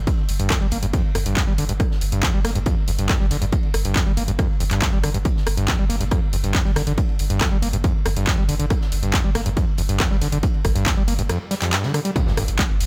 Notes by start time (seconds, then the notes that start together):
0.07 G2, kick, closed hi-hat, ride
0.18 ride
0.29 G1, open hi-hat, ride
0.39 G1 G2, closed hi-hat
0.50 F2, kick, cross-stick, snare, clap, closed hi-hat, ride
0.61 G1 G3, ride
0.71 G1 A#3, open hi-hat, ride
0.83 G1 G2, closed hi-hat
0.93 F2, kick, closed hi-hat, ride
1.15 G1 F2, cross-stick, open hi-hat, ride
1.26 G1 G2, closed hi-hat
1.36 F2, kick, snare, clap, closed hi-hat
1.47 G1 G3, ride
1.58 G1 D3, open hi-hat, ride
1.69 G1 G2, closed hi-hat, ride
1.80 G2, kick, cross-stick, closed hi-hat, ride
1.91 snare
2.01 G1, open hi-hat, ride
2.12 G1 G2, closed hi-hat, ride
2.23 F2, kick, snare, clap, closed hi-hat, ride
2.34 G1 G3
2.44 G1 A#3, cross-stick, snare, open hi-hat, ride
2.55 G1 G2, closed hi-hat
2.66 F2, kick, closed hi-hat, ride
2.88 G1 F2, open hi-hat, ride
2.99 G1 G2, closed hi-hat
3.09 F2, kick, cross-stick, snare, clap, closed hi-hat, ride
3.20 G1 G3, snare
3.31 G1 D3, snare, open hi-hat, ride
3.42 G1 G2, closed hi-hat
3.52 G2, kick, closed hi-hat, ride
3.63 ride
3.74 G1, cross-stick, open hi-hat, ride
3.85 G1 G2, closed hi-hat
3.95 F2, kick, snare, clap, closed hi-hat, ride
4.06 G1 G3, ride
4.17 G1 A#3, open hi-hat, ride
4.28 G1 G2, closed hi-hat
4.39 F2, kick, cross-stick, closed hi-hat, ride
4.60 G1 F2, open hi-hat, ride
4.71 G1 G2, clap, closed hi-hat
4.81 F2, kick, snare, clap, closed hi-hat
4.93 G1 G3, ride
5.03 G1 D3, cross-stick, open hi-hat, ride
5.14 G1 G2, closed hi-hat, ride
5.25 G2, kick, closed hi-hat, ride
5.37 snare
5.47 G1, cross-stick, open hi-hat, ride
5.57 G1 G2, closed hi-hat, ride
5.68 F2, kick, snare, clap, closed hi-hat
5.79 G1 G3
5.90 G1 A#3, snare, open hi-hat, ride
6.00 G1 G2, closed hi-hat
6.11 F2, kick, cross-stick, closed hi-hat, ride
6.33 G1 F2, open hi-hat, ride
6.44 G1 G2, closed hi-hat
6.54 F2, kick, snare, clap, closed hi-hat, ride
6.65 G1 G3, snare
6.76 G1 D3, cross-stick, snare, open hi-hat, ride
6.87 G1 D3, closed hi-hat
6.97 G2, kick, closed hi-hat, ride
7.09 ride
7.19 G1, open hi-hat, ride
7.30 G1 G2, closed hi-hat
7.41 F2, kick, cross-stick, snare, clap, closed hi-hat
7.51 G1 G3, ride
7.62 G1 A#3, open hi-hat, ride
7.73 G1 G2, closed hi-hat
7.84 F2, kick, closed hi-hat, ride
8.05 G1 F2, cross-stick, open hi-hat, ride
8.16 G1 G2, closed hi-hat
8.27 F2, kick, snare, clap, closed hi-hat, ride
8.38 G1 G3, ride
8.48 G1 D3, open hi-hat, ride
8.59 G1 D3, closed hi-hat, ride
8.70 G2, kick, cross-stick, closed hi-hat, ride
8.81 snare
8.92 G1, open hi-hat, ride
9.03 G1 G2, closed hi-hat, ride
9.13 F2, kick, snare, clap, closed hi-hat, ride
9.24 G1 G3
9.35 G1 A#3, cross-stick, snare, open hi-hat, ride
9.46 G1 G2, closed hi-hat
9.57 F2, kick, closed hi-hat, ride
9.78 G1 F2, open hi-hat, ride
9.89 G1 G2, closed hi-hat
10.00 F2, kick, cross-stick, snare, clap, closed hi-hat, ride
10.11 G1 G3, snare
10.21 G1 D3, snare, open hi-hat, ride
10.32 G1 D3, closed hi-hat
10.43 G2, kick, closed hi-hat, ride
10.54 ride
10.65 G1, kick, cross-stick, open hi-hat, ride
10.75 G1 G2, closed hi-hat
10.86 F2, kick, snare, clap, closed hi-hat
10.97 G1 G3, ride
11.08 G1 A#3, open hi-hat, ride
11.19 G1 G2, closed hi-hat
11.29 F2, cross-stick, closed hi-hat, ride, swell
11.51 G3, snare, open hi-hat, ride
11.62 F2, clap, closed hi-hat, ride
11.72 G2, snare, clap, closed hi-hat, ride
11.83 D3, snare, ride
11.94 D3, cross-stick, open hi-hat, ride
12.05 G3, closed hi-hat, ride
12.15 G2, kick, closed hi-hat, ride, impact
12.26 G2, snare
12.37 G1 G2, cross-stick, open hi-hat, ride
12.48 G1, closed hi-hat, ride
12.58 G3, kick, snare, clap, closed hi-hat, ride
12.70 G1
12.80 G1, snare, open hi-hat, ride